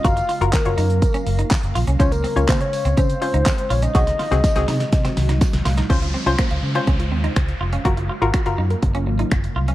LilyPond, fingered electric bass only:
\new Staff \with { instrumentName = "Fingered electric bass" } { \clef bass \time 4/4 \key des \major \tempo 4 = 123 ges,,8 r16 ges,,16 r16 ges,,16 ges,8. r16 ges,,8 r16 ges,,16 bes,,16 c,16 | r8. des,16 des8 r16 des,16 des8 r16 des,16 r8 bes,,8 | c,8 r16 c,16 r16 c,16 c8 c8 c,8. c,16 c,8 | des,8. c,16 r16 des,16 des8 des,8 ees,8 des,8 f,,8 |
ges,,8. aes,,16 r16 ges,,16 ges,8 ges,,8 aes,,8 ges,,8 c,8 | }